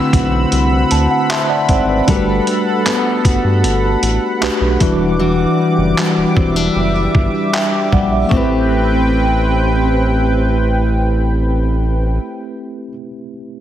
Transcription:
Already playing: D3 A3 C4 E4 F#4 B4 F#5 B5 E6
0.13 B1 F#4, kick, closed hi-hat
0.52 C2, closed hi-hat
0.91 D2 A5, closed hi-hat
1.11 F#5
1.30 E5 A5 C6, clap, closed hi-hat
1.50 D5 F#5 A5
1.69 G#1 C4 D5 F#5, kick, closed hi-hat
1.89 B4 D5
2.07 G1 G3 A3 D4 F#4 G4 A4 A#4, kick, closed hi-hat
2.16 B4
2.47 closed hi-hat
2.86 B3, clap, closed hi-hat
3.25 G1 F#4, kick, closed hi-hat
3.44 G2
3.63 G1, closed hi-hat
4.02 A1, closed hi-hat
4.41 B1 A3 D4 F#4 G4 B4, clap, closed hi-hat
4.61 B1
4.80 E1 E3 G3 D4 E4 F#4 B4 D6, kick, closed hi-hat
5.19 E3 F#4
5.78 F#1
5.98 G3, clap
6.17 E1
6.36 E1 C4 E5, kick
6.56 D4
6.76 F#1
7.15 G1, kick
7.54 E5 G5, clap
7.92 A#1 G3 D5 F#5, kick
8.12 E5
8.26 A3 C4
8.31 A1 C4 E4 G4 B4 G5, kick
8.37 B4

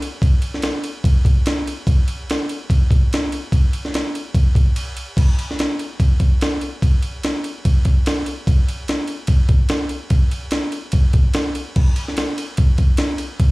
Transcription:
0.02 ride
0.22 kick, ride
0.42 ride
0.54 snare
0.62 snare, ride
0.84 ride
1.04 kick, ride
1.25 kick, ride
1.46 snare, ride
1.67 ride
1.87 kick, ride
2.08 ride
2.30 snare, ride
2.49 ride
2.70 kick, ride
2.91 kick, ride
3.13 snare, ride
3.32 ride
3.52 kick, ride
3.73 ride
3.85 snare
3.94 snare, ride
4.15 ride
4.35 kick, ride
4.55 kick, ride
4.76 ride
4.97 ride
5.17 kick, crash, ride
5.39 ride
5.51 snare
5.59 snare, ride
5.79 ride
6.00 kick, ride
6.20 kick, ride
6.41 snare, ride
6.61 ride
6.82 kick, ride
7.02 ride
7.23 snare, ride
7.44 ride
7.65 kick, ride
7.85 kick, ride
8.06 snare, ride
8.26 ride
8.47 kick, ride
8.68 ride
8.88 snare, ride
9.08 ride
9.27 kick, ride
9.49 kick, ride
9.69 snare, ride
9.89 ride
10.10 kick, ride
10.31 ride
10.51 snare, ride
10.72 ride
10.92 kick, ride
11.13 kick, ride
11.34 snare, ride
11.55 ride
11.76 kick, crash
11.96 ride
12.08 snare
12.17 snare, ride
12.38 ride
12.57 kick, ride
12.78 kick, ride
12.97 snare, ride
13.18 ride
13.40 kick, ride

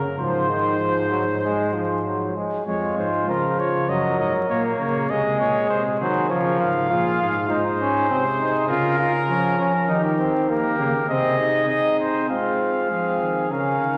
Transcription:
Already playing: A#4
0.18 G#2 F3 C5
0.50 D#3
0.80 F3
1.11 F#3
1.44 G#3
1.74 F3
2.05 F#3
2.36 G#3
2.66 F2 G#3 F4 C#5
2.97 G#2 C5
3.27 C#3 F3 A#4
3.59 C#5
3.88 F#2 F#3 A#4 D#5
4.18 G#2 D#5
4.48 A#2 A#3 C#5
4.79 C#3 C#5
5.09 C3 G#3 G#4 D#5
5.40 A#2 C#5
5.70 C3 C5
6.00 D#3 F#3 C5
6.29 C#3 F3 A#4 C#5
6.60 G#2 F5
6.90 A#2 F4 G#4
7.21 G#2 G#4
7.49 G#2 D#4 C5
7.81 C#4
8.10 C3 C4 G#4
8.40 D#4
8.69 C#3 F4 A#4
8.99 F4
9.29 F3 C#4
9.59 C#4
9.88 D#3 D#4 G4
10.18 C4
10.49 A#3 G4 A#4
10.79 C#3 A#3
11.08 C3 C4 G#4 D#5
11.39 D#4
11.68 C4 D#5
11.99 C5
12.29 G#3 C4 F4 F5
12.90 F3 C4 G#4
13.21 D#3
13.50 C#3 C#4 A#4 F5
13.81 D#3

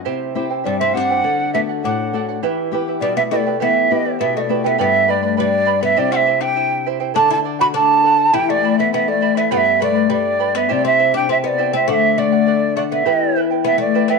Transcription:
0.05 C3 E4 G4 C5 E5 G5
0.35 C4 E4 G4 C5 E5 G5
0.50 E4 C5 G5
0.64 G2 G3 E4 C5 D5 E5 G5
0.79 C4 E5
0.93 C4 D4 E4 G4 C5 E5 F#5 G5
1.10 E4 C5 G5
1.24 D3 A4 D5 F#5
1.53 A3 B3 D4 F#4 A4 D5 E5 F#5
1.69 D5 F#5
1.82 A2 D4 A4 D5 F#5
2.13 A3 D4 F#4 A4 D5 F#5
2.29 D5 F#5
2.43 E3 E4 G4 B4 E5 G5
2.71 B3 E4 G4 B4 E5 G5
2.88 E4 B4 G5
3.01 B2 G3 E4 B4 D5 E5 G5
3.16 B3 E5
3.31 A3 B3 E4 G4 B4 D#5 E5 G5
3.36 D5
3.46 E4 B4 G5
3.60 E3 B3 E4 G4 B4 E5 G5
3.90 B3 E4 G4 B4 E5 G5
4.05 E4 B4 G5
4.19 B2 B3 E4 B4 E5 G5
4.36 A3 D5 D#5
4.49 B3 E4 G4 B4 E5 G5
4.64 B3 E4 B4 E5 G5
4.78 G2 B3 G4 B4 D5 E5 G5 B5
5.08 A3 B4 D5 G5 B5
5.23 B4 D5 B5
5.37 G3 B4 D5 G5 B5
5.66 B4 D5 G5 B5
5.81 B3 B4 D5 E5 B5
5.97 C3 G3 E4 G4 C5 D5 E5 G5
6.11 C4 F#5
6.16 E5
6.26 E4 C5 E5 G5
6.41 D4 E4 C5 G5
6.56 E4 C5 E5 G5
6.86 E4 C5 E5 G5
7.00 E4 C5 G5
7.14 D3 D4 A4 D5 F#5 A5
7.30 E4 A5
7.44 A4 D5 F#5
7.59 F#4 D5 F#5 B5
7.73 D4 A4 D5 F#5 A5
8.04 A4 D5 F#5
8.18 D5 F#5
8.33 E3 E4 G4 E5 G5 B5
8.49 A3 D5
8.63 E4 E5 G5 B5
8.78 B3 E4 E5 B5
8.93 B3 E4 E5 G5 B5
9.08 A3 D5
9.21 E4 E5 G5 B5
9.35 B3 E4 E5 B5
9.51 G2 B3 G4 B4 D5 F#5 G5 B5
9.57 E5
9.80 A3 B4 D5 G5 B5
9.95 B4 D5 B5
10.09 G3 B4 D5 G5 B5
10.39 B4 D5 G5 B5
10.55 B3 B4 D5 E5 B5
10.69 C3 G3 E4 G4 C5 D5 E5 G5
10.85 C4 E5
10.99 E4 C5 E5 G5
11.14 D4 E4 C5 G5
11.29 C4 E4 C5 E5 G5
11.44 B3 D#5
11.48 D5
11.58 E4 C5 E5 G5
11.73 C4 E4 C5 E5 G5
11.88 D3 A3 A4 D5 F#5
11.93 E5
12.17 A3 A4 D5 F#5
12.32 D5 F#5
12.47 A4 D5 F#5
12.76 A3 A4 D5 F#5
12.91 B3 D5 E5 F#5
13.05 E3 E4 G4 B4 E5 G5
13.36 E4 B4 E5 G5
13.50 E4 B4 G5
13.64 B3 E4 B4 E5 G5
13.78 A3 D5
13.94 E4 B4 E5 G5
14.08 B3 E4 B4 E5 G5

